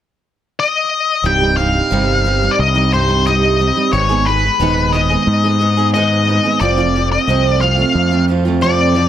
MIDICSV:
0, 0, Header, 1, 4, 480
1, 0, Start_track
1, 0, Tempo, 670391
1, 891, Time_signature, 4, 2, 24, 8
1, 6506, End_track
2, 0, Start_track
2, 0, Title_t, "Lead electric guitar"
2, 0, Program_c, 0, 29
2, 427, Note_on_c, 0, 75, 86
2, 903, Note_on_c, 0, 79, 100
2, 913, Note_off_c, 0, 75, 0
2, 1120, Note_off_c, 0, 79, 0
2, 1123, Note_on_c, 0, 77, 89
2, 1799, Note_on_c, 0, 74, 60
2, 1817, Note_off_c, 0, 77, 0
2, 1851, Note_off_c, 0, 74, 0
2, 1861, Note_on_c, 0, 75, 83
2, 2098, Note_off_c, 0, 75, 0
2, 2101, Note_on_c, 0, 72, 65
2, 2337, Note_off_c, 0, 72, 0
2, 2340, Note_on_c, 0, 75, 81
2, 2809, Note_off_c, 0, 75, 0
2, 2811, Note_on_c, 0, 73, 86
2, 3049, Note_on_c, 0, 71, 82
2, 3059, Note_off_c, 0, 73, 0
2, 3527, Note_on_c, 0, 75, 86
2, 3545, Note_off_c, 0, 71, 0
2, 4221, Note_off_c, 0, 75, 0
2, 4252, Note_on_c, 0, 75, 77
2, 4729, Note_off_c, 0, 75, 0
2, 4732, Note_on_c, 0, 74, 82
2, 5067, Note_off_c, 0, 74, 0
2, 5100, Note_on_c, 0, 75, 71
2, 5447, Note_off_c, 0, 75, 0
2, 5450, Note_on_c, 0, 77, 72
2, 5902, Note_off_c, 0, 77, 0
2, 6174, Note_on_c, 0, 74, 70
2, 6506, Note_off_c, 0, 74, 0
2, 6506, End_track
3, 0, Start_track
3, 0, Title_t, "Steel-string acoustic guitar"
3, 0, Program_c, 1, 25
3, 884, Note_on_c, 1, 36, 72
3, 889, Note_on_c, 1, 43, 69
3, 894, Note_on_c, 1, 48, 73
3, 899, Note_on_c, 1, 55, 92
3, 903, Note_on_c, 1, 63, 79
3, 1003, Note_off_c, 1, 63, 0
3, 1005, Note_on_c, 1, 63, 68
3, 1008, Note_off_c, 1, 55, 0
3, 1016, Note_on_c, 1, 55, 59
3, 1019, Note_off_c, 1, 48, 0
3, 1028, Note_on_c, 1, 48, 55
3, 1115, Note_off_c, 1, 43, 0
3, 1123, Note_off_c, 1, 48, 0
3, 1123, Note_on_c, 1, 43, 51
3, 1130, Note_off_c, 1, 55, 0
3, 1132, Note_on_c, 1, 48, 59
3, 1138, Note_on_c, 1, 55, 59
3, 1139, Note_off_c, 1, 63, 0
3, 1141, Note_on_c, 1, 63, 65
3, 1247, Note_off_c, 1, 36, 0
3, 1364, Note_off_c, 1, 43, 0
3, 1364, Note_on_c, 1, 36, 86
3, 1367, Note_off_c, 1, 48, 0
3, 1372, Note_on_c, 1, 43, 80
3, 1373, Note_off_c, 1, 55, 0
3, 1376, Note_on_c, 1, 48, 88
3, 1381, Note_off_c, 1, 63, 0
3, 1382, Note_on_c, 1, 55, 89
3, 1384, Note_on_c, 1, 63, 89
3, 1597, Note_off_c, 1, 43, 0
3, 1605, Note_off_c, 1, 48, 0
3, 1605, Note_on_c, 1, 43, 59
3, 1610, Note_off_c, 1, 55, 0
3, 1613, Note_on_c, 1, 48, 66
3, 1618, Note_on_c, 1, 55, 61
3, 1622, Note_off_c, 1, 63, 0
3, 1625, Note_on_c, 1, 63, 75
3, 1719, Note_off_c, 1, 63, 0
3, 1727, Note_on_c, 1, 63, 52
3, 1732, Note_off_c, 1, 55, 0
3, 1740, Note_off_c, 1, 48, 0
3, 1740, Note_on_c, 1, 55, 53
3, 1749, Note_on_c, 1, 48, 49
3, 1848, Note_off_c, 1, 36, 0
3, 1960, Note_off_c, 1, 63, 0
3, 1968, Note_on_c, 1, 63, 75
3, 1969, Note_off_c, 1, 43, 0
3, 1973, Note_off_c, 1, 55, 0
3, 1981, Note_off_c, 1, 48, 0
3, 1981, Note_on_c, 1, 55, 59
3, 1989, Note_on_c, 1, 48, 53
3, 2087, Note_on_c, 1, 43, 61
3, 2088, Note_off_c, 1, 48, 0
3, 2095, Note_off_c, 1, 55, 0
3, 2096, Note_on_c, 1, 48, 62
3, 2101, Note_off_c, 1, 63, 0
3, 2103, Note_on_c, 1, 55, 66
3, 2109, Note_on_c, 1, 63, 67
3, 2198, Note_off_c, 1, 63, 0
3, 2206, Note_on_c, 1, 63, 64
3, 2208, Note_off_c, 1, 55, 0
3, 2217, Note_on_c, 1, 55, 52
3, 2219, Note_off_c, 1, 48, 0
3, 2228, Note_on_c, 1, 48, 50
3, 2327, Note_off_c, 1, 43, 0
3, 2327, Note_on_c, 1, 36, 68
3, 2331, Note_off_c, 1, 48, 0
3, 2336, Note_on_c, 1, 43, 76
3, 2338, Note_off_c, 1, 55, 0
3, 2339, Note_on_c, 1, 48, 84
3, 2341, Note_off_c, 1, 63, 0
3, 2346, Note_on_c, 1, 55, 94
3, 2349, Note_on_c, 1, 63, 92
3, 2559, Note_off_c, 1, 43, 0
3, 2566, Note_off_c, 1, 48, 0
3, 2567, Note_on_c, 1, 43, 61
3, 2573, Note_off_c, 1, 55, 0
3, 2575, Note_on_c, 1, 48, 64
3, 2578, Note_off_c, 1, 63, 0
3, 2582, Note_on_c, 1, 55, 60
3, 2587, Note_on_c, 1, 63, 70
3, 2680, Note_off_c, 1, 63, 0
3, 2689, Note_on_c, 1, 63, 53
3, 2692, Note_off_c, 1, 55, 0
3, 2701, Note_on_c, 1, 55, 53
3, 2702, Note_off_c, 1, 48, 0
3, 2711, Note_on_c, 1, 48, 49
3, 2795, Note_off_c, 1, 36, 0
3, 2795, Note_off_c, 1, 43, 0
3, 2796, Note_off_c, 1, 63, 0
3, 2802, Note_off_c, 1, 55, 0
3, 2807, Note_off_c, 1, 48, 0
3, 2807, Note_on_c, 1, 44, 72
3, 2813, Note_on_c, 1, 51, 86
3, 2817, Note_on_c, 1, 56, 74
3, 2822, Note_on_c, 1, 59, 88
3, 2826, Note_on_c, 1, 63, 76
3, 2830, Note_on_c, 1, 68, 74
3, 2920, Note_off_c, 1, 68, 0
3, 2929, Note_on_c, 1, 68, 81
3, 2930, Note_off_c, 1, 63, 0
3, 2936, Note_off_c, 1, 59, 0
3, 2939, Note_on_c, 1, 63, 61
3, 2943, Note_off_c, 1, 56, 0
3, 2945, Note_on_c, 1, 59, 64
3, 2951, Note_on_c, 1, 56, 58
3, 3040, Note_off_c, 1, 56, 0
3, 3048, Note_on_c, 1, 56, 52
3, 3051, Note_off_c, 1, 59, 0
3, 3056, Note_off_c, 1, 63, 0
3, 3060, Note_on_c, 1, 59, 59
3, 3062, Note_off_c, 1, 68, 0
3, 3065, Note_on_c, 1, 63, 66
3, 3070, Note_on_c, 1, 68, 67
3, 3169, Note_off_c, 1, 44, 0
3, 3173, Note_off_c, 1, 51, 0
3, 3290, Note_off_c, 1, 56, 0
3, 3291, Note_on_c, 1, 44, 81
3, 3295, Note_off_c, 1, 59, 0
3, 3296, Note_on_c, 1, 51, 82
3, 3299, Note_on_c, 1, 56, 90
3, 3301, Note_off_c, 1, 63, 0
3, 3302, Note_off_c, 1, 68, 0
3, 3304, Note_on_c, 1, 59, 91
3, 3309, Note_on_c, 1, 63, 99
3, 3311, Note_on_c, 1, 68, 89
3, 3523, Note_off_c, 1, 56, 0
3, 3532, Note_off_c, 1, 59, 0
3, 3532, Note_on_c, 1, 56, 70
3, 3539, Note_off_c, 1, 63, 0
3, 3540, Note_on_c, 1, 59, 77
3, 3545, Note_off_c, 1, 68, 0
3, 3547, Note_on_c, 1, 63, 71
3, 3553, Note_on_c, 1, 68, 71
3, 3642, Note_off_c, 1, 68, 0
3, 3648, Note_off_c, 1, 63, 0
3, 3651, Note_on_c, 1, 68, 61
3, 3657, Note_off_c, 1, 59, 0
3, 3657, Note_on_c, 1, 63, 56
3, 3663, Note_off_c, 1, 56, 0
3, 3665, Note_on_c, 1, 59, 56
3, 3672, Note_on_c, 1, 56, 55
3, 3771, Note_off_c, 1, 44, 0
3, 3774, Note_off_c, 1, 51, 0
3, 3880, Note_off_c, 1, 68, 0
3, 3887, Note_off_c, 1, 63, 0
3, 3889, Note_on_c, 1, 68, 62
3, 3896, Note_off_c, 1, 59, 0
3, 3896, Note_on_c, 1, 63, 57
3, 3900, Note_off_c, 1, 56, 0
3, 3904, Note_on_c, 1, 59, 54
3, 3909, Note_on_c, 1, 56, 61
3, 3997, Note_off_c, 1, 56, 0
3, 4006, Note_on_c, 1, 56, 59
3, 4007, Note_off_c, 1, 59, 0
3, 4014, Note_off_c, 1, 63, 0
3, 4016, Note_on_c, 1, 59, 73
3, 4017, Note_off_c, 1, 68, 0
3, 4022, Note_on_c, 1, 63, 69
3, 4026, Note_on_c, 1, 68, 69
3, 4123, Note_off_c, 1, 68, 0
3, 4129, Note_off_c, 1, 63, 0
3, 4131, Note_on_c, 1, 68, 63
3, 4136, Note_off_c, 1, 59, 0
3, 4138, Note_on_c, 1, 63, 58
3, 4141, Note_off_c, 1, 56, 0
3, 4145, Note_on_c, 1, 59, 60
3, 4150, Note_on_c, 1, 56, 60
3, 4253, Note_on_c, 1, 44, 83
3, 4256, Note_off_c, 1, 56, 0
3, 4256, Note_off_c, 1, 59, 0
3, 4256, Note_on_c, 1, 51, 71
3, 4262, Note_off_c, 1, 63, 0
3, 4264, Note_off_c, 1, 68, 0
3, 4264, Note_on_c, 1, 56, 80
3, 4264, Note_on_c, 1, 59, 89
3, 4270, Note_on_c, 1, 63, 94
3, 4273, Note_on_c, 1, 68, 82
3, 4483, Note_off_c, 1, 56, 0
3, 4490, Note_off_c, 1, 59, 0
3, 4491, Note_on_c, 1, 56, 58
3, 4498, Note_off_c, 1, 63, 0
3, 4499, Note_on_c, 1, 59, 57
3, 4504, Note_off_c, 1, 68, 0
3, 4506, Note_on_c, 1, 63, 65
3, 4513, Note_on_c, 1, 68, 67
3, 4601, Note_off_c, 1, 68, 0
3, 4609, Note_off_c, 1, 63, 0
3, 4609, Note_on_c, 1, 68, 58
3, 4616, Note_off_c, 1, 59, 0
3, 4618, Note_on_c, 1, 63, 55
3, 4620, Note_off_c, 1, 56, 0
3, 4624, Note_on_c, 1, 59, 50
3, 4628, Note_on_c, 1, 56, 50
3, 4716, Note_off_c, 1, 68, 0
3, 4718, Note_off_c, 1, 44, 0
3, 4720, Note_off_c, 1, 51, 0
3, 4720, Note_off_c, 1, 63, 0
3, 4724, Note_off_c, 1, 59, 0
3, 4725, Note_on_c, 1, 41, 76
3, 4726, Note_off_c, 1, 56, 0
3, 4729, Note_on_c, 1, 48, 77
3, 4733, Note_on_c, 1, 53, 75
3, 4740, Note_on_c, 1, 57, 87
3, 4744, Note_on_c, 1, 60, 81
3, 4747, Note_on_c, 1, 65, 91
3, 4842, Note_off_c, 1, 65, 0
3, 4851, Note_on_c, 1, 65, 71
3, 4857, Note_off_c, 1, 60, 0
3, 4860, Note_on_c, 1, 60, 65
3, 4863, Note_off_c, 1, 53, 0
3, 4863, Note_off_c, 1, 57, 0
3, 4866, Note_on_c, 1, 57, 62
3, 4872, Note_on_c, 1, 53, 57
3, 4962, Note_off_c, 1, 53, 0
3, 4971, Note_on_c, 1, 53, 58
3, 4978, Note_off_c, 1, 57, 0
3, 4981, Note_on_c, 1, 57, 65
3, 4984, Note_off_c, 1, 60, 0
3, 4985, Note_off_c, 1, 65, 0
3, 4987, Note_on_c, 1, 60, 72
3, 4993, Note_on_c, 1, 65, 72
3, 5088, Note_off_c, 1, 41, 0
3, 5091, Note_off_c, 1, 48, 0
3, 5210, Note_off_c, 1, 53, 0
3, 5210, Note_on_c, 1, 41, 75
3, 5214, Note_on_c, 1, 48, 83
3, 5219, Note_on_c, 1, 53, 84
3, 5220, Note_off_c, 1, 57, 0
3, 5222, Note_off_c, 1, 65, 0
3, 5223, Note_on_c, 1, 57, 77
3, 5224, Note_off_c, 1, 60, 0
3, 5227, Note_on_c, 1, 60, 92
3, 5231, Note_on_c, 1, 65, 98
3, 5437, Note_off_c, 1, 53, 0
3, 5445, Note_on_c, 1, 53, 59
3, 5451, Note_off_c, 1, 57, 0
3, 5454, Note_on_c, 1, 57, 61
3, 5456, Note_off_c, 1, 60, 0
3, 5457, Note_off_c, 1, 65, 0
3, 5459, Note_on_c, 1, 60, 70
3, 5466, Note_on_c, 1, 65, 74
3, 5553, Note_off_c, 1, 65, 0
3, 5562, Note_on_c, 1, 65, 56
3, 5568, Note_off_c, 1, 60, 0
3, 5569, Note_off_c, 1, 57, 0
3, 5571, Note_on_c, 1, 60, 51
3, 5576, Note_off_c, 1, 53, 0
3, 5577, Note_on_c, 1, 57, 52
3, 5585, Note_on_c, 1, 53, 51
3, 5691, Note_off_c, 1, 41, 0
3, 5693, Note_off_c, 1, 48, 0
3, 5798, Note_off_c, 1, 65, 0
3, 5807, Note_on_c, 1, 65, 72
3, 5812, Note_off_c, 1, 57, 0
3, 5814, Note_off_c, 1, 60, 0
3, 5816, Note_on_c, 1, 60, 70
3, 5820, Note_on_c, 1, 57, 59
3, 5821, Note_off_c, 1, 53, 0
3, 5829, Note_on_c, 1, 53, 52
3, 5920, Note_off_c, 1, 53, 0
3, 5928, Note_off_c, 1, 57, 0
3, 5929, Note_on_c, 1, 53, 68
3, 5937, Note_on_c, 1, 57, 66
3, 5941, Note_off_c, 1, 60, 0
3, 5943, Note_off_c, 1, 65, 0
3, 5944, Note_on_c, 1, 60, 66
3, 5952, Note_on_c, 1, 65, 66
3, 6041, Note_off_c, 1, 65, 0
3, 6050, Note_on_c, 1, 65, 68
3, 6054, Note_off_c, 1, 60, 0
3, 6057, Note_off_c, 1, 57, 0
3, 6057, Note_on_c, 1, 60, 65
3, 6062, Note_off_c, 1, 53, 0
3, 6065, Note_on_c, 1, 57, 57
3, 6071, Note_on_c, 1, 53, 50
3, 6166, Note_on_c, 1, 41, 89
3, 6167, Note_off_c, 1, 53, 0
3, 6169, Note_on_c, 1, 48, 76
3, 6171, Note_off_c, 1, 57, 0
3, 6175, Note_on_c, 1, 53, 77
3, 6178, Note_off_c, 1, 65, 0
3, 6180, Note_on_c, 1, 57, 83
3, 6181, Note_off_c, 1, 60, 0
3, 6184, Note_on_c, 1, 60, 86
3, 6187, Note_on_c, 1, 65, 89
3, 6394, Note_off_c, 1, 53, 0
3, 6400, Note_off_c, 1, 57, 0
3, 6403, Note_on_c, 1, 53, 56
3, 6408, Note_on_c, 1, 57, 65
3, 6413, Note_off_c, 1, 60, 0
3, 6415, Note_off_c, 1, 65, 0
3, 6416, Note_on_c, 1, 60, 67
3, 6424, Note_on_c, 1, 65, 69
3, 6506, Note_off_c, 1, 41, 0
3, 6506, Note_off_c, 1, 48, 0
3, 6506, Note_off_c, 1, 53, 0
3, 6506, Note_off_c, 1, 57, 0
3, 6506, Note_off_c, 1, 60, 0
3, 6506, Note_off_c, 1, 65, 0
3, 6506, End_track
4, 0, Start_track
4, 0, Title_t, "Fingered electric bass"
4, 0, Program_c, 2, 33
4, 885, Note_on_c, 2, 24, 81
4, 1286, Note_off_c, 2, 24, 0
4, 1370, Note_on_c, 2, 31, 69
4, 1769, Note_off_c, 2, 31, 0
4, 1854, Note_on_c, 2, 36, 87
4, 2649, Note_off_c, 2, 36, 0
4, 2812, Note_on_c, 2, 32, 86
4, 3210, Note_off_c, 2, 32, 0
4, 3289, Note_on_c, 2, 27, 73
4, 3688, Note_off_c, 2, 27, 0
4, 3773, Note_on_c, 2, 44, 89
4, 4569, Note_off_c, 2, 44, 0
4, 4731, Note_on_c, 2, 29, 83
4, 5129, Note_off_c, 2, 29, 0
4, 5208, Note_on_c, 2, 36, 65
4, 5608, Note_off_c, 2, 36, 0
4, 5691, Note_on_c, 2, 41, 87
4, 6488, Note_off_c, 2, 41, 0
4, 6506, End_track
0, 0, End_of_file